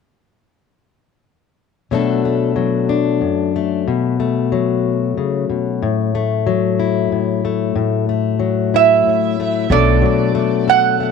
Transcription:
1.91 steel-string acoustic guitar B2 F#3 A3 D4 A4
2.25 steel-string acoustic guitar A3
2.56 steel-string acoustic guitar F#3
2.89 steel-string acoustic guitar D4
3.21 steel-string acoustic guitar F#2
3.56 steel-string acoustic guitar A3
3.88 steel-string acoustic guitar B2
4.20 steel-string acoustic guitar A3
4.52 steel-string acoustic guitar F#3
5.17 steel-string acoustic guitar C#3
5.50 steel-string acoustic guitar B2
5.82 steel-string acoustic guitar A2
6.15 steel-string acoustic guitar A3
6.47 steel-string acoustic guitar F#3
6.79 steel-string acoustic guitar E4
7.12 steel-string acoustic guitar A2
7.45 steel-string acoustic guitar A3
7.76 steel-string acoustic guitar A2
8.09 steel-string acoustic guitar A3
8.39 steel-string acoustic guitar F#3
8.74 steel-string acoustic guitar E4, resonator guitar played with a steel bar E5
9.06 steel-string acoustic guitar A2
9.40 steel-string acoustic guitar A3
9.70 upright bass B1, steel-string acoustic guitar B2 F#3 A3 D4 A4, resonator guitar played with a steel bar D5
10.02 steel-string acoustic guitar F#3
10.35 steel-string acoustic guitar A3
10.68 steel-string acoustic guitar A4, resonator guitar played with a steel bar F#5
11.00 steel-string acoustic guitar A3

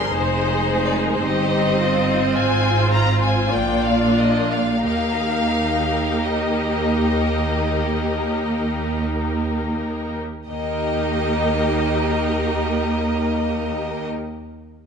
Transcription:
Already playing: double bass section G1, cello section G2, viola section F3 D4, violin section G#4 A#4 C6
0.12 double bass section F1, cello section F2, viola section G#3 D#4, violin section G#4 C5
0.16 violin section C5
0.66 viola section G#3
0.86 violin section D5
0.97 violin section C5
1.06 violin section A#4
1.14 violin section C5
1.21 double bass section G1, cello section G2, viola section C4 D#4, violin section G4 C5 D#5
1.77 violin section F4
2.33 double bass section G#1, cello section G#2, viola section F4, violin section F4 C5 G#5
2.91 violin section A#5
3.22 violin section G#5
3.51 double bass section A#1, cello section A#2, viola section A#3 D4, violin section D5 G5
3.84 violin section F5
4.18 violin section D#5
4.51 violin section F5
4.83 cello section D#2, double bass section D#2, viola section A#3 D#4, violin section G4 A#4 F5
6.23 violin section D#5
10.48 cello section D#2, double bass section D#2, viola section A#3 D#4, violin section G4 A#4 D#5

